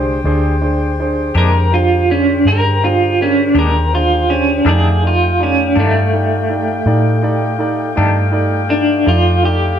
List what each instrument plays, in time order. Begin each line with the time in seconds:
Already playing: fingered electric bass C2, tonewheel organ D3 G#3 G4 C5, grand piano D4 G4 G#4 C5, horn section C5 G5
0.24 fingered electric bass D2, tonewheel organ D3 G4 G#4 C5, grand piano D4 G4 G#4 C5
0.61 grand piano D4 G4 G#4 C5
1.00 grand piano D4 G4 G#4 C5
1.35 fingered electric bass F2, clean electric guitar A#2 G#3 D4 G4 A#4, grand piano D4 G4 G#4 C5
1.72 grand piano D4 G4 G#4 C5, clean electric guitar F4
2.10 clean electric guitar C#4, grand piano D4 G4 G#4 C5
2.45 fingered electric bass G2, grand piano D4 G4 G#4 C5, clean electric guitar A#4
2.83 grand piano D4 G4 G#4 C5, clean electric guitar F4
3.21 clean electric guitar C#4, grand piano D4 G4 G#4 A#4
3.55 fingered electric bass D#2, clean electric guitar A#2 G#3 D4 G4, grand piano D4 G4 G#4 C5
3.59 clean electric guitar A#4
3.93 grand piano D4 G4 G#4 C5, clean electric guitar F4
4.30 clean electric guitar C#4, grand piano D4 G4 G#4 C5
4.65 clean electric guitar F2 D#3 A3 D4 G#4, fingered electric bass F2, tonewheel organ D#3 A3 F4 G5, horn section A3 F5, grand piano D#4 G4 A4 D5
5.02 grand piano D#4 G4 A4 D5
5.07 clean electric guitar F4
5.39 clean electric guitar C#4, grand piano D#4 G4 A4 D5
5.76 clean electric guitar F2 D#3 A3 D4, fingered electric bass G2, grand piano D#4 G4 A4 D5
6.13 grand piano D#4 G4 A4 D5
6.49 grand piano D#4 G4 A4 D5
6.86 fingered electric bass A2, grand piano D#4 G4 A4 D5
7.22 grand piano D#4 G4 A4 D5
7.58 grand piano D#4 G4 A4 D5
7.96 clean electric guitar F2 D#3 A3 D4, fingered electric bass G2, grand piano D#4 G4 A4 D5
8.32 grand piano D#4 G4 A4 D5
8.69 clean electric guitar D4, grand piano D#4 G4 A4 D5
9.05 fingered electric bass F2, tonewheel organ D4 F4 G4 A4, grand piano D#4 G4 A4 D5, clean electric guitar F4
9.42 grand piano D#4 G4 A4 D5, clean electric guitar G4